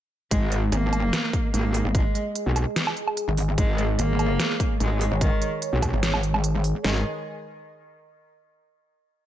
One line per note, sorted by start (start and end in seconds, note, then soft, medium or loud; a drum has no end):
0.31 0.71 G#1 loud
0.31 0.54 G#3 loud
0.31 6.80 G#3 medium
0.31 6.80 G#4 medium
0.31 3.55 D#5 medium
0.31 kick loud
0.31 closed hi-hat medium
0.52 closed hi-hat medium
0.72 1.11 G#1 loud
0.72 1.46 A#3 loud
0.72 closed hi-hat medium
0.93 closed hi-hat medium
0.93 low woodblock medium
1.13 snare loud
1.13 closed hi-hat medium
1.33 kick loud
1.33 closed hi-hat medium
1.54 1.83 G#1 medium
1.54 1.76 A#3 medium
1.54 closed hi-hat medium
1.74 open hi-hat loud
1.85 2.04 G#1 loud
1.95 2.17 G#3 medium
1.95 kick loud
1.95 closed hi-hat medium
2.15 closed hi-hat medium
2.36 closed hi-hat medium
2.46 2.65 B1 loud
2.56 closed hi-hat medium
2.56 low woodblock medium
2.76 snare loud
2.76 closed hi-hat medium
2.87 low woodblock medium
2.97 closed hi-hat medium
3.08 low woodblock medium
3.17 closed hi-hat medium
3.28 3.56 G#1 loud
3.38 open hi-hat medium
3.58 3.97 G#1 loud
3.58 3.80 G#3 loud
3.58 6.81 C#5 medium
3.58 kick loud
3.58 closed hi-hat medium
3.78 closed hi-hat medium
3.99 4.38 G#1 loud
3.99 4.73 A#3 loud
3.99 closed hi-hat medium
4.19 closed hi-hat medium
4.19 low woodblock medium
4.40 snare loud
4.40 closed hi-hat medium
4.60 kick loud
4.60 closed hi-hat medium
4.80 5.10 G#1 loud
4.80 5.03 G#3 medium
4.80 closed hi-hat medium
5.01 open hi-hat medium
5.12 5.30 G#1 loud
5.21 5.44 D#3 medium
5.21 kick loud
5.21 closed hi-hat medium
5.42 closed hi-hat medium
5.62 closed hi-hat medium
5.73 5.91 B1 loud
5.82 kick medium
5.82 closed hi-hat medium
5.82 low woodblock medium
5.93 6.73 G#1 loud
6.03 snare loud
6.03 closed hi-hat medium
6.14 low woodblock medium
6.23 closed hi-hat medium
6.34 low woodblock medium
6.44 closed hi-hat medium
6.64 open hi-hat medium
6.84 7.03 G#1 medium
6.84 7.00 D#3 medium
6.84 7.03 G#3 medium
6.84 7.03 G#4 medium
6.84 7.03 B4 medium
6.84 7.03 D#5 medium
6.84 snare loud